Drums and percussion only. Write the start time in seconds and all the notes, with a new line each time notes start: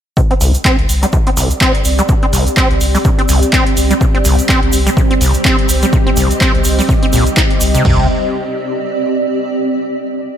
0.17 kick, shaker
0.31 closed hi-hat
0.41 open hi-hat, shaker
0.54 closed hi-hat, shaker
0.65 kick, clap, shaker
0.79 closed hi-hat
0.89 open hi-hat, shaker
1.03 closed hi-hat, shaker
1.13 kick, shaker
1.27 closed hi-hat
1.37 open hi-hat, shaker
1.50 closed hi-hat, shaker
1.61 kick, clap, shaker
1.75 closed hi-hat
1.85 open hi-hat, shaker
1.99 closed hi-hat, shaker
2.09 kick, shaker
2.23 closed hi-hat
2.33 open hi-hat, shaker
2.47 closed hi-hat, shaker
2.57 kick, clap, shaker
2.71 closed hi-hat
2.81 open hi-hat, shaker
2.95 open hi-hat, shaker
3.05 kick, shaker
3.19 closed hi-hat
3.29 open hi-hat, shaker
3.42 closed hi-hat, shaker
3.53 kick, clap, shaker
3.67 closed hi-hat
3.77 open hi-hat, shaker
3.90 closed hi-hat, shaker
4.01 kick, shaker
4.15 closed hi-hat
4.25 open hi-hat, shaker
4.39 closed hi-hat, shaker
4.49 kick, clap, shaker
4.63 closed hi-hat
4.73 open hi-hat, shaker
4.87 closed hi-hat, shaker
4.97 kick, shaker
5.11 closed hi-hat
5.21 open hi-hat, shaker
5.34 closed hi-hat, shaker
5.44 kick, clap, shaker
5.59 closed hi-hat
5.69 open hi-hat, shaker
5.82 closed hi-hat, shaker
5.93 kick, shaker
6.07 closed hi-hat
6.16 open hi-hat, shaker
6.31 closed hi-hat, shaker
6.41 kick, clap, shaker
6.55 closed hi-hat
6.64 open hi-hat, shaker
6.79 open hi-hat, shaker
6.89 kick, shaker
7.03 closed hi-hat
7.13 open hi-hat, shaker
7.27 closed hi-hat, shaker
7.37 kick, clap, shaker
7.51 closed hi-hat
7.61 open hi-hat, shaker
7.75 closed hi-hat, shaker
7.85 kick, floor tom, crash